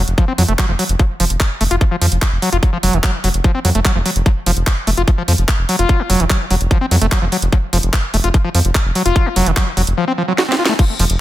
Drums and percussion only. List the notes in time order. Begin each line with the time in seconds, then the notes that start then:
0.08 closed hi-hat
0.18 kick, closed hi-hat
0.38 open hi-hat
0.48 closed hi-hat
0.59 kick, clap, closed hi-hat
0.79 open hi-hat
0.89 closed hi-hat
0.99 kick, closed hi-hat
1.20 open hi-hat
1.30 closed hi-hat
1.40 kick, clap, closed hi-hat
1.61 open hi-hat
1.71 closed hi-hat
1.81 kick, closed hi-hat
2.02 open hi-hat
2.12 closed hi-hat
2.22 kick, clap, closed hi-hat
2.42 open hi-hat
2.53 closed hi-hat
2.63 kick, closed hi-hat
2.83 open hi-hat
2.93 closed hi-hat
3.04 kick, clap, closed hi-hat
3.24 open hi-hat
3.34 closed hi-hat
3.44 kick, closed hi-hat
3.65 open hi-hat
3.75 closed hi-hat
3.85 kick, clap, closed hi-hat
4.06 open hi-hat
4.16 closed hi-hat
4.26 kick, closed hi-hat
4.46 open hi-hat
4.57 closed hi-hat
4.67 kick, clap, closed hi-hat
4.87 open hi-hat
4.97 closed hi-hat
5.08 kick, closed hi-hat
5.28 open hi-hat
5.38 closed hi-hat
5.48 kick, clap, closed hi-hat
5.69 open hi-hat
5.79 closed hi-hat
5.89 kick, closed hi-hat
6.10 open hi-hat
6.20 closed hi-hat
6.30 kick, clap, closed hi-hat
6.51 open hi-hat
6.61 closed hi-hat
6.71 kick, closed hi-hat
6.91 open hi-hat
7.02 closed hi-hat
7.12 kick, clap, closed hi-hat
7.32 open hi-hat
7.42 closed hi-hat
7.53 kick, closed hi-hat
7.73 open hi-hat
7.83 closed hi-hat
7.93 kick, clap, closed hi-hat
8.14 open hi-hat
8.24 closed hi-hat
8.34 kick, closed hi-hat
8.55 open hi-hat
8.65 closed hi-hat
8.75 kick, clap, closed hi-hat
8.95 open hi-hat
9.06 closed hi-hat
9.16 kick, closed hi-hat
9.36 open hi-hat
9.46 closed hi-hat
9.57 kick, clap
9.77 open hi-hat
9.87 closed hi-hat
10.38 snare
10.52 snare
10.65 snare
10.79 kick, closed hi-hat, crash
10.99 open hi-hat
11.10 closed hi-hat